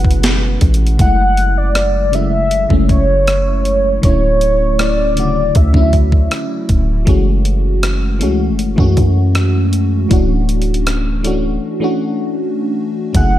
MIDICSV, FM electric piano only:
0, 0, Header, 1, 2, 480
1, 0, Start_track
1, 0, Key_signature, 3, "minor"
1, 0, Tempo, 759494
1, 629, Time_signature, 4, 2, 24, 8
1, 8461, End_track
2, 0, Start_track
2, 0, Title_t, "FM electric piano"
2, 0, Program_c, 0, 5
2, 0, Control_c, 0, 64, 127
2, 0, Note_on_c, 0, 47, 76
2, 0, Note_on_c, 0, 52, 67
2, 0, Note_on_c, 0, 56, 70
2, 0, Note_on_c, 0, 57, 65
2, 0, Note_on_c, 0, 61, 84
2, 617, Note_on_c, 0, 49, 69
2, 624, Note_on_c, 0, 54, 62
2, 630, Note_off_c, 0, 56, 0
2, 630, Note_on_c, 0, 56, 66
2, 636, Note_off_c, 0, 57, 0
2, 636, Note_on_c, 0, 57, 61
2, 638, Control_c, 0, 64, 0
2, 640, Note_off_c, 0, 52, 0
2, 642, Note_on_c, 0, 64, 75
2, 643, Note_off_c, 0, 47, 0
2, 643, Note_off_c, 0, 61, 0
2, 746, Control_c, 0, 64, 127
2, 1263, Note_off_c, 0, 49, 0
2, 1266, Note_off_c, 0, 54, 0
2, 1269, Note_off_c, 0, 56, 0
2, 1272, Note_off_c, 0, 57, 0
2, 1275, Note_off_c, 0, 64, 0
2, 1338, Note_on_c, 0, 49, 70
2, 1344, Note_on_c, 0, 54, 62
2, 1350, Note_on_c, 0, 56, 59
2, 1356, Note_on_c, 0, 57, 61
2, 1362, Note_on_c, 0, 64, 72
2, 1663, Note_off_c, 0, 49, 0
2, 1666, Note_off_c, 0, 54, 0
2, 1669, Note_off_c, 0, 56, 0
2, 1673, Note_off_c, 0, 57, 0
2, 1675, Note_off_c, 0, 64, 0
2, 1699, Note_on_c, 0, 49, 75
2, 1705, Note_on_c, 0, 54, 67
2, 1711, Note_on_c, 0, 56, 66
2, 1717, Note_on_c, 0, 57, 68
2, 1724, Note_on_c, 0, 61, 80
2, 2451, Note_off_c, 0, 49, 0
2, 2453, Note_off_c, 0, 54, 0
2, 2457, Note_off_c, 0, 56, 0
2, 2460, Note_off_c, 0, 57, 0
2, 2463, Note_off_c, 0, 61, 0
2, 2539, Note_on_c, 0, 50, 72
2, 2546, Note_on_c, 0, 54, 64
2, 2551, Note_on_c, 0, 57, 63
2, 2558, Control_c, 0, 64, 0
2, 2558, Note_on_c, 0, 61, 63
2, 2564, Note_on_c, 0, 64, 77
2, 2670, Control_c, 0, 64, 127
2, 3184, Note_off_c, 0, 50, 0
2, 3188, Note_off_c, 0, 54, 0
2, 3190, Note_off_c, 0, 57, 0
2, 3193, Note_off_c, 0, 61, 0
2, 3197, Note_off_c, 0, 64, 0
2, 3259, Note_on_c, 0, 50, 68
2, 3265, Note_on_c, 0, 54, 62
2, 3271, Note_on_c, 0, 57, 64
2, 3277, Note_on_c, 0, 49, 63
2, 3283, Note_on_c, 0, 66, 76
2, 3584, Note_off_c, 0, 50, 0
2, 3587, Note_off_c, 0, 54, 0
2, 3590, Note_off_c, 0, 57, 0
2, 3593, Note_off_c, 0, 49, 0
2, 3596, Note_off_c, 0, 66, 0
2, 3620, Note_on_c, 0, 50, 78
2, 3627, Note_on_c, 0, 54, 69
2, 3632, Note_on_c, 0, 57, 65
2, 3639, Note_on_c, 0, 61, 69
2, 3644, Note_on_c, 0, 64, 83
2, 4371, Note_off_c, 0, 50, 0
2, 4374, Note_off_c, 0, 54, 0
2, 4377, Note_off_c, 0, 57, 0
2, 4381, Note_off_c, 0, 61, 0
2, 4383, Note_off_c, 0, 64, 0
2, 4457, Note_on_c, 0, 52, 84
2, 4463, Note_on_c, 0, 56, 79
2, 4470, Note_on_c, 0, 57, 72
2, 4475, Note_on_c, 0, 61, 75
2, 4478, Control_c, 0, 64, 0
2, 4482, Note_on_c, 0, 66, 88
2, 4603, Control_c, 0, 64, 127
2, 5103, Note_off_c, 0, 52, 0
2, 5106, Note_off_c, 0, 56, 0
2, 5110, Note_off_c, 0, 57, 0
2, 5112, Note_off_c, 0, 61, 0
2, 5116, Note_off_c, 0, 66, 0
2, 5178, Note_on_c, 0, 52, 83
2, 5185, Note_on_c, 0, 56, 78
2, 5190, Note_on_c, 0, 57, 75
2, 5197, Note_on_c, 0, 61, 74
2, 5202, Note_on_c, 0, 66, 90
2, 5503, Note_off_c, 0, 52, 0
2, 5507, Note_off_c, 0, 56, 0
2, 5510, Note_off_c, 0, 57, 0
2, 5513, Note_off_c, 0, 61, 0
2, 5516, Note_off_c, 0, 66, 0
2, 5537, Note_on_c, 0, 52, 85
2, 5543, Note_on_c, 0, 56, 80
2, 5549, Note_on_c, 0, 57, 84
2, 5555, Note_on_c, 0, 61, 81
2, 5561, Note_on_c, 0, 66, 98
2, 6289, Note_off_c, 0, 52, 0
2, 6293, Note_off_c, 0, 56, 0
2, 6296, Note_off_c, 0, 57, 0
2, 6299, Note_off_c, 0, 61, 0
2, 6302, Note_off_c, 0, 66, 0
2, 6377, Note_on_c, 0, 52, 85
2, 6384, Note_on_c, 0, 57, 72
2, 6390, Note_on_c, 0, 61, 75
2, 6396, Control_c, 0, 64, 0
2, 6396, Note_on_c, 0, 62, 78
2, 6403, Note_on_c, 0, 66, 90
2, 6522, Control_c, 0, 64, 127
2, 7023, Note_off_c, 0, 52, 0
2, 7026, Note_off_c, 0, 57, 0
2, 7030, Note_off_c, 0, 61, 0
2, 7033, Note_off_c, 0, 62, 0
2, 7036, Note_off_c, 0, 66, 0
2, 7098, Note_on_c, 0, 52, 81
2, 7104, Note_on_c, 0, 57, 79
2, 7110, Note_on_c, 0, 61, 77
2, 7117, Note_on_c, 0, 62, 76
2, 7123, Note_on_c, 0, 66, 89
2, 7423, Note_off_c, 0, 52, 0
2, 7427, Note_off_c, 0, 57, 0
2, 7429, Note_off_c, 0, 61, 0
2, 7433, Note_off_c, 0, 62, 0
2, 7436, Note_off_c, 0, 66, 0
2, 7459, Note_on_c, 0, 52, 87
2, 7464, Note_on_c, 0, 57, 84
2, 7470, Note_on_c, 0, 61, 81
2, 7476, Note_on_c, 0, 62, 84
2, 7483, Note_on_c, 0, 66, 94
2, 8210, Note_off_c, 0, 52, 0
2, 8213, Note_off_c, 0, 57, 0
2, 8216, Note_off_c, 0, 61, 0
2, 8219, Note_off_c, 0, 62, 0
2, 8223, Note_off_c, 0, 66, 0
2, 8298, Note_on_c, 0, 54, 67
2, 8304, Note_on_c, 0, 57, 63
2, 8310, Note_on_c, 0, 49, 63
2, 8316, Control_c, 0, 64, 0
2, 8316, Note_on_c, 0, 64, 66
2, 8323, Note_on_c, 0, 68, 77
2, 8424, Control_c, 0, 64, 127
2, 8461, Note_off_c, 0, 49, 0
2, 8461, Note_off_c, 0, 54, 0
2, 8461, Note_off_c, 0, 57, 0
2, 8461, Note_off_c, 0, 64, 0
2, 8461, Note_off_c, 0, 68, 0
2, 8461, End_track
0, 0, End_of_file